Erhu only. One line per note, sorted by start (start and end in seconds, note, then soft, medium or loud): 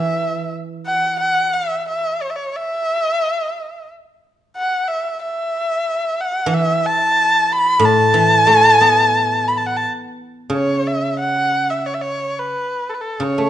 0.00 0.52 E5 medium
0.86 1.17 F#5 medium
1.20 1.55 F#5 loud
1.53 1.87 E5 medium
1.88 2.23 E5 medium
2.21 2.31 C#5 medium
2.30 2.37 E5 medium
2.36 2.58 C#5 medium
2.56 3.89 E5 loud
4.56 4.89 F#5 medium
4.88 5.20 E5 medium
5.22 6.22 E5 medium
6.21 6.55 F#5 medium
6.54 6.88 E5 loud
6.86 7.54 A5 loud
7.52 7.86 B5 loud
7.85 9.49 A5 loud
9.48 9.59 B5 medium
9.57 9.68 A5 medium
9.67 9.78 F#5 medium
9.76 9.85 A5 medium
10.53 10.89 C#5 medium
10.87 11.19 E5 medium
11.19 11.71 F#5 medium
11.70 11.87 E5 medium
11.86 11.96 C#5 medium
11.94 12.03 E5 medium
12.01 12.40 C#5 medium
12.39 12.91 B4 medium
12.89 12.95 A4 medium
12.94 13.03 B4 medium
13.01 13.25 A4 medium
13.23 13.50 C#5 medium